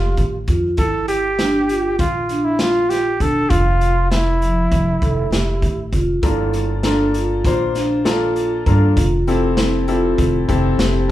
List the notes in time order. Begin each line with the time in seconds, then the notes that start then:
Already playing: F1 F4 G4
0.17 A1, kick, closed hi-hat
0.48 F2 F4, kick, closed hi-hat
0.77 G1 E4 A4, kick, closed hi-hat
1.08 G4, closed hi-hat
1.39 D4, snare, closed hi-hat
1.69 F4, closed hi-hat
1.99 A#1 F4, kick, closed hi-hat
2.29 D4, closed hi-hat
2.45 E4
2.59 F4, snare, closed hi-hat
2.90 G4, snare, closed hi-hat
3.20 E1 D4 A4, kick, closed hi-hat
3.50 F1 F4, kick, closed hi-hat
3.81 closed hi-hat
4.11 E4, snare, closed hi-hat
4.41 F3, closed hi-hat
4.71 F1, kick, closed hi-hat
5.02 F1 A4, kick, closed hi-hat
5.31 F1 G4, snare, closed hi-hat
5.62 A1, kick, closed hi-hat
5.92 F1 F4, kick, closed hi-hat
6.22 G1 A#3 D4 E4 F4 A4, kick, closed hi-hat
6.53 closed hi-hat
6.83 A#3 D4 F4 A4, snare, closed hi-hat
7.14 F4, closed hi-hat
7.45 A#1 A#3 D4 F4 C5, kick, closed hi-hat
7.75 D4, snare, closed hi-hat
8.04 A#3 D4 F4 A4, snare, closed hi-hat
8.36 closed hi-hat
8.66 G2 A#3 D4 F4 A4, kick, closed hi-hat
8.96 F1 F4, kick, closed hi-hat
9.27 C4 E4 G4 A4, closed hi-hat
9.57 E4, snare, closed hi-hat
9.88 C4 E4 F4 G4 A4, closed hi-hat
10.18 F1, kick, closed hi-hat
10.48 F1 C4 E4 G4 A4, kick, closed hi-hat
10.78 F1 G4, snare, closed hi-hat
11.08 C4